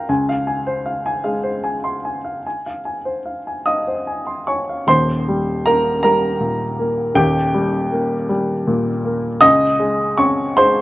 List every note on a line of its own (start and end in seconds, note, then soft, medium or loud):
0.00 0.11 A#4 soft
0.00 0.11 F5 soft
0.00 0.11 G5 soft
0.00 0.11 A#5 soft
0.09 2.41 C#2 medium
0.09 0.39 G#5 soft
0.29 0.59 F5 medium
0.47 0.78 G#5 soft
0.67 0.97 C5 soft
0.86 1.17 F5 soft
1.06 1.37 G#5 soft
1.24 4.88 G#3 soft
1.24 1.56 F5 soft
1.43 1.76 C5 soft
1.64 1.96 G#5 soft
1.84 2.16 C6 soft
2.05 2.37 G#5 soft
2.24 2.57 F5 soft
2.46 2.78 G#5 soft
2.66 2.98 F5 soft
2.85 3.18 G#5 soft
3.05 3.38 C5 soft
3.25 3.58 F5 soft
3.47 3.79 G#5 soft
3.66 4.45 D#5 medium
3.66 3.99 F5 soft
3.66 4.48 D#6 medium
3.87 4.20 C5 soft
4.07 4.40 G#5 soft
4.27 4.60 C6 soft
4.47 4.85 C#5 soft
4.47 4.80 G#5 soft
4.47 4.88 C#6 medium
4.69 4.89 F5 soft
4.87 7.12 D#1 medium
4.87 7.12 D#2 medium
4.87 5.62 C5 medium
4.87 5.65 C6 medium
5.28 5.89 G3 soft
5.66 6.26 A#3 soft
5.66 6.01 A#4 medium
5.66 6.01 A#5 medium
6.03 6.63 G3 soft
6.03 7.13 A#4 medium
6.03 7.16 A#5 medium
6.40 7.01 A#2 soft
6.79 7.40 A#3 soft
7.14 9.37 D#1 medium
7.14 9.38 D#2 medium
7.14 8.26 G4 medium
7.14 8.29 G5 medium
7.54 8.15 G3 medium
7.92 8.52 A#3 soft
8.29 8.89 G3 medium
8.67 9.27 A#2 medium
9.05 9.42 A#3 medium
9.41 10.81 C#2 medium
9.41 10.14 D#5 loud
9.41 10.18 D#6 loud
9.80 10.42 G#3 medium
10.18 10.81 C4 medium
10.18 10.55 C#4 medium
10.18 10.57 C#6 medium
10.57 10.81 G#3 soft
10.57 10.81 C5 medium
10.57 10.81 C6 loud